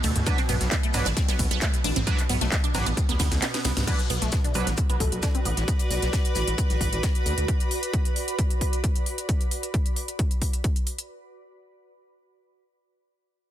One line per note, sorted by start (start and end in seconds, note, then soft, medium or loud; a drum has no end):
0.00 0.11 D2 loud
0.00 3.92 B2 medium
0.00 0.08 A3 medium
0.00 open hi-hat medium
0.00 ride medium
0.00 shaker medium
0.16 0.23 D2 medium
0.16 closed hi-hat medium
0.16 mid tom loud
0.26 0.38 F#3 medium
0.26 0.38 D4 medium
0.26 0.31 D4 medium
0.26 0.38 B4 loud
0.26 kick loud
0.26 closed hi-hat medium
0.26 shaker medium
0.38 0.41 C4 medium
0.38 snare soft
0.38 closed hi-hat medium
0.49 0.57 B1 loud
0.49 0.54 B3 medium
0.49 snare soft
0.49 mid tom medium
0.49 open hi-hat loud
0.49 ride medium
0.49 shaker medium
0.61 0.68 B1 medium
0.61 snare medium
0.61 closed hi-hat medium
0.71 0.74 B3 loud
0.71 kick loud
0.71 snare loud
0.71 clap loud
0.71 closed hi-hat medium
0.71 shaker loud
0.83 0.87 A3 medium
0.83 closed hi-hat medium
0.93 1.02 B1 loud
0.93 1.05 F#3 medium
0.93 1.05 D4 medium
0.93 1.05 B4 medium
0.93 snare loud
0.93 mid tom medium
0.93 open hi-hat medium
0.93 ride medium
0.93 shaker medium
1.05 1.13 A1 medium
1.05 1.10 D4 medium
1.05 snare loud
1.05 closed hi-hat medium
1.05 shaker medium
1.17 1.19 C4 medium
1.17 kick loud
1.17 snare loud
1.17 closed hi-hat medium
1.17 shaker medium
1.28 1.35 B1 medium
1.28 1.33 B3 medium
1.28 snare loud
1.28 closed hi-hat medium
1.28 shaker medium
1.39 1.47 B1 loud
1.39 kick medium
1.39 open hi-hat loud
1.39 ride medium
1.39 shaker medium
1.51 1.58 B1 medium
1.51 1.54 B3 loud
1.51 closed hi-hat medium
1.61 1.66 A3 medium
1.61 kick loud
1.61 snare loud
1.61 clap loud
1.61 closed hi-hat medium
1.61 shaker medium
1.74 closed hi-hat medium
1.84 1.92 A1 loud
1.84 1.89 D4 medium
1.84 open hi-hat medium
1.84 ride medium
1.84 shaker medium
1.95 2.03 A1 medium
1.95 1.99 C4 medium
1.95 snare soft
1.95 closed hi-hat medium
1.95 mid tom loud
2.07 2.18 F#3 loud
2.07 2.11 B3 medium
2.07 2.18 D4 medium
2.07 2.18 B4 loud
2.07 kick loud
2.07 closed hi-hat medium
2.07 shaker medium
2.18 clap soft
2.18 closed hi-hat soft
2.18 closed hi-hat medium
2.29 2.37 B1 loud
2.29 2.32 B3 loud
2.29 snare soft
2.29 mid tom medium
2.29 open hi-hat loud
2.29 ride medium
2.29 shaker medium
2.41 2.48 B1 medium
2.41 2.45 A3 medium
2.41 snare medium
2.41 closed hi-hat medium
2.52 kick loud
2.52 snare loud
2.52 clap loud
2.52 closed hi-hat medium
2.52 shaker loud
2.64 2.68 D4 medium
2.64 closed hi-hat medium
2.74 2.82 A1 loud
2.74 2.86 F#3 medium
2.74 2.77 C4 medium
2.74 2.86 D4 medium
2.74 2.86 B4 medium
2.74 snare medium
2.74 mid tom medium
2.74 open hi-hat medium
2.74 ride medium
2.74 shaker medium
2.86 2.93 A1 medium
2.86 2.91 B3 medium
2.86 closed hi-hat medium
2.97 kick loud
2.97 closed hi-hat medium
2.97 shaker medium
3.09 3.16 D2 medium
3.09 3.11 B3 loud
3.09 snare soft
3.09 closed hi-hat medium
3.19 3.27 D2 loud
3.19 3.27 B3 medium
3.19 kick medium
3.19 snare medium
3.19 open hi-hat loud
3.19 ride medium
3.19 shaker medium
3.32 3.38 D2 medium
3.32 snare medium
3.32 closed hi-hat medium
3.42 3.47 B3 loud
3.42 snare soft
3.42 snare medium
3.42 clap loud
3.42 closed hi-hat medium
3.42 shaker medium
3.54 3.58 B3 medium
3.54 snare medium
3.54 snare soft
3.54 closed hi-hat medium
3.65 3.72 C2 loud
3.65 3.72 B3 medium
3.65 snare loud
3.65 open hi-hat medium
3.65 ride medium
3.65 shaker medium
3.77 3.84 C2 medium
3.77 snare medium
3.77 closed hi-hat medium
3.77 mid tom medium
3.87 3.99 F#3 loud
3.87 3.92 B3 medium
3.87 3.99 D4 medium
3.87 9.29 F#4 medium
3.87 3.99 B4 loud
3.87 kick loud
3.87 closed hi-hat medium
3.87 crash medium
3.87 shaker medium
3.99 snare soft
3.99 closed hi-hat medium
4.09 4.18 B1 loud
4.09 4.13 B3 loud
4.09 snare soft
4.09 open hi-hat loud
4.09 shaker medium
4.17 9.29 B4 medium
4.21 4.29 B1 medium
4.21 4.26 A3 medium
4.21 snare medium
4.21 closed hi-hat medium
4.32 kick loud
4.32 snare loud
4.32 closed hi-hat medium
4.32 shaker loud
4.41 4.48 D4 medium
4.41 9.29 B5 medium
4.41 closed hi-hat medium
4.46 9.29 D5 medium
4.54 4.63 B1 loud
4.54 4.66 F#3 medium
4.54 4.58 C4 medium
4.54 4.66 D4 medium
4.54 4.66 B4 medium
4.54 open hi-hat medium
4.54 shaker medium
4.67 4.74 A1 medium
4.67 4.71 B3 medium
4.67 snare medium
4.67 closed hi-hat medium
4.77 kick loud
4.77 closed hi-hat medium
4.77 shaker medium
4.90 4.96 B1 medium
4.90 4.92 B3 loud
4.90 closed hi-hat medium
5.00 5.08 B1 medium
5.00 5.05 A3 medium
5.00 kick medium
5.00 open hi-hat loud
5.00 shaker medium
5.12 5.19 B1 medium
5.12 closed hi-hat medium
5.22 5.27 D4 medium
5.22 kick loud
5.22 snare loud
5.22 closed hi-hat medium
5.22 shaker medium
5.35 5.37 C4 medium
5.35 closed hi-hat medium
5.45 5.53 A1 medium
5.45 5.50 B3 medium
5.45 open hi-hat medium
5.45 shaker medium
5.57 5.64 A1 medium
5.57 snare soft
5.57 closed hi-hat medium
5.68 kick loud
5.68 closed hi-hat medium
5.68 shaker medium
5.79 closed hi-hat soft
5.79 closed hi-hat medium
5.90 5.98 B1 loud
5.90 snare soft
5.90 open hi-hat loud
5.90 shaker medium
6.02 6.09 B1 medium
6.02 snare medium
6.02 closed hi-hat medium
6.13 kick loud
6.13 snare loud
6.13 closed hi-hat medium
6.13 shaker medium
6.25 closed hi-hat medium
6.35 6.43 A1 medium
6.35 snare medium
6.35 open hi-hat medium
6.35 shaker medium
6.47 6.54 A1 medium
6.47 closed hi-hat medium
6.58 kick loud
6.58 closed hi-hat medium
6.58 shaker medium
6.70 6.77 A1 medium
6.70 snare soft
6.70 closed hi-hat medium
6.81 6.88 A1 loud
6.81 kick medium
6.81 open hi-hat loud
6.81 shaker medium
6.92 6.99 A1 medium
6.92 closed hi-hat medium
7.03 kick loud
7.03 snare loud
7.03 closed hi-hat medium
7.03 shaker medium
7.15 closed hi-hat medium
7.26 7.33 D2 medium
7.26 open hi-hat medium
7.26 shaker medium
7.38 7.44 D2 medium
7.38 closed hi-hat medium
7.48 kick loud
7.48 closed hi-hat medium
7.60 closed hi-hat medium
7.71 open hi-hat loud
7.83 closed hi-hat medium
7.93 kick loud
7.93 closed hi-hat medium
8.05 closed hi-hat medium
8.16 open hi-hat loud
8.28 closed hi-hat medium
8.39 kick loud
8.39 closed hi-hat medium
8.50 closed hi-hat medium
8.61 kick medium
8.61 open hi-hat loud
8.73 closed hi-hat medium
8.84 kick loud
8.84 closed hi-hat medium
8.96 closed hi-hat medium
9.06 open hi-hat medium
9.18 closed hi-hat medium
9.29 kick loud
9.29 closed hi-hat medium
9.41 closed hi-hat soft
9.51 open hi-hat loud
9.63 closed hi-hat soft
9.74 kick loud
9.74 closed hi-hat medium
9.86 closed hi-hat medium
9.96 open hi-hat medium
10.08 closed hi-hat soft
10.19 kick loud
10.19 closed hi-hat medium
10.31 closed hi-hat soft
10.42 kick medium
10.42 open hi-hat loud
10.53 closed hi-hat soft
10.64 kick loud
10.64 closed hi-hat medium
10.76 closed hi-hat soft
10.87 open hi-hat loud
10.98 closed hi-hat soft